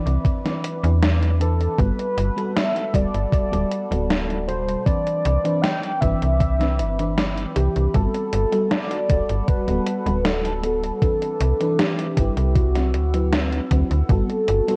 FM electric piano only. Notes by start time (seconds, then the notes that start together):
Already playing: E3 C4 D4 B4
0.44 E3 C4 D4 B4
0.83 E3 C4 D4 B4
1.39 E3 C4 D4 B4
1.78 G3 B3 F#4 A4
2.36 G3 B3 F#4 A4
2.93 G3 B3 F#4 A4
3.51 G3 B3 F#4 A4
3.90 G3 B3 F#4 A4
4.47 B2 G3 F#4 A4
4.86 E3 C4 D4 B4
5.44 E3 C4 D4 B4
6.01 E3 C4 D4 B4
6.59 E3 C4 D4 B4
6.98 E3 C4 D4 B4
7.55 E3 C4 D4 B4
7.93 G3 B3 F#4 A4
8.51 G3 B3 F#4 A4
9.08 G3 B3 F#4 A4
9.67 G3 B3 F#4 A4
10.05 G3 B3 F#4 A4
10.62 G3 B3 F#4 A4
11.01 E3 C4 D4 B4
11.60 E3 C4 D4 B4
12.17 G3 C4 E4 B4
12.75 F#3 C4 E4 B4
13.14 F#3 C4 E4 B4
13.71 F#3 C4 E4 B4
14.09 G3 B3 F#4 A4
14.67 G3 B3 F#4 A4